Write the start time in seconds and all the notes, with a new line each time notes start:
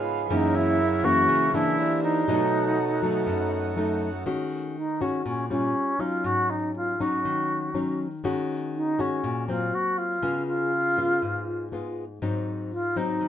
Already playing: G#2 C#3 G#3 B3 F4 G#4 B4 C#5 D#5 F5 G#5
0.04 B5
0.26 F#3 A#3 E4 G#4
0.30 F#2 E3 A#3 C#4 D#4 A#4 C#5
0.55 E4
1.04 E3 A#3 C#4 F#4
1.28 C#3
1.54 E3 A#3 D4 E4
1.76 D3 C4 E4 G4 A#4 D5
2.03 D#4
2.26 B2 D#3 F#3 A3 B3 D#4 F#4 A4
2.31 C#5
3.03 F#3 A3 D#4
3.27 F#2
3.77 F#3 A3 D#4
4.26 D#3 G#3 C#4 F#4
4.77 D#4
5.01 G#3 C#4 F#4
5.26 A#2 C#4
5.50 G3 C#4 F4
5.99 F#3 C#4 D#4 F4
6.24 G#2 F#4
6.50 D#4
6.76 F4
7.00 F#3 C#4 D#4 F#4
7.25 D#3
7.74 F#3 C#4 D#4
8.24 D#3 G#3 C#4 F#4
8.76 D#4
8.99 G#3 C#4 F#4
9.24 A#2
9.48 F#3 A#3 C4 F4
9.75 F#4
9.98 F4
10.22 C#3 G#3 B3 F4
10.47 F4
10.97 G#3 B3 F4
11.22 G#2
11.72 G#3 B3 F4
12.22 G#2 F#3 C4 D#4
12.72 F4
12.96 F#3 C4 D#4
13.21 D#3